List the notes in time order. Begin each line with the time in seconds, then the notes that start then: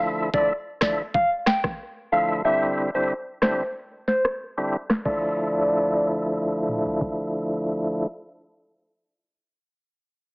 Already playing: D3 F3 A3 E4
0.34 D3 F3 A3 E4 D5, kick
0.81 D3 F3 A3 E4 D5, kick, cross-stick, snare
1.14 F5, kick
1.46 G5, cross-stick, snare
1.64 kick, cross-stick
2.12 D3 F3 A3 E4 F5
2.44 D3 G3 C4 E4 E5
2.94 D3 G3 C4 E4 C5
3.42 D3 G3 C4 E4 C5, cross-stick, snare
4.08 C5, snare
4.25 cross-stick
4.57 D3 G3 C4 E4
4.90 cross-stick, snare
5.05 D3 F3 A3 E4 D5, kick, crash
6.69 mid tom
6.86 floor tom
7.01 kick